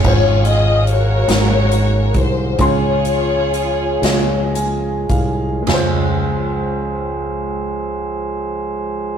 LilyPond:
<<
  \new Staff \with { instrumentName = "String section" } { \time 6/8 \key des \major \tempo 4. = 40 << { des''8 ees''8 des''4. c''8 | des''2 r4 | r2. | } \\ { <f' aes'>4 <ges' bes'>4. r8 | <f' aes'>2 r4 | r2. | } >> }
  \new Staff \with { instrumentName = "Grand piano" } { \time 6/8 \key des \major <aes des' f' c'' des''>4 r8 <aes des' ges' bes'>4 r8 | <aes des' f' c'''>4 r8 <aes des' f' ees''>4 r8 | <aes des' f' c''>2. | }
  \new Staff \with { instrumentName = "Grand piano" } { \clef bass \time 6/8 \key des \major aes,4. aes,4. | des4. r8 aes''8 f''8 | des,2. | }
  \new Staff \with { instrumentName = "Tonewheel organ" } { \time 6/8 \key des \major <aes des' f''>4. <ees bes des' ges'>4. | <f des' aes'>2. | <f aes des' aes' c''>2. | }
  \new Staff \with { instrumentName = "Fingered electric bass" } { \clef bass \time 6/8 \key des \major aes,,4. aes,,4 c,8 | des,4. des,4 c,8 | des,2. | }
  \new DrumStaff \with { instrumentName = "Drums" } \drummode { \time 6/8 <cymc bd>8 hh8 hh8 <hh sn>8 hh8 <hh bd>8 | <hh bd>8 hh8 hh8 <hh sn>8 hh8 <hh bd>8 | <cymc sn tomfh>4. r4. | }
>>